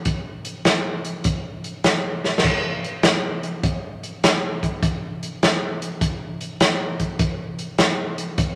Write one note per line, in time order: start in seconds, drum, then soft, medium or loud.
0.05 kick medium
0.05 closed hi-hat medium
0.45 closed hi-hat medium
0.65 snare loud
0.65 closed hi-hat medium
1.04 closed hi-hat medium
1.24 kick loud
1.24 closed hi-hat medium
1.64 closed hi-hat medium
1.84 snare loud
1.84 closed hi-hat medium
2.24 snare medium
2.38 snare medium
2.44 kick medium
2.44 crash medium
2.84 closed hi-hat medium
3.03 snare loud
3.03 closed hi-hat medium
3.43 closed hi-hat medium
3.63 kick loud
3.63 closed hi-hat medium
4.03 closed hi-hat medium
4.24 snare loud
4.24 closed hi-hat medium
4.63 kick medium
4.63 closed hi-hat medium
4.83 kick loud
4.83 closed hi-hat medium
5.23 closed hi-hat medium
5.43 snare loud
5.43 closed hi-hat medium
5.82 closed hi-hat medium
6.01 kick loud
6.01 closed hi-hat medium
6.41 closed hi-hat medium
6.60 snare loud
6.60 closed hi-hat medium
7.00 kick medium
7.00 closed hi-hat medium
7.19 kick loud
7.19 closed hi-hat medium
7.59 closed hi-hat medium
7.78 snare loud
7.78 closed hi-hat medium
8.18 closed hi-hat medium
8.38 kick loud
8.38 closed hi-hat medium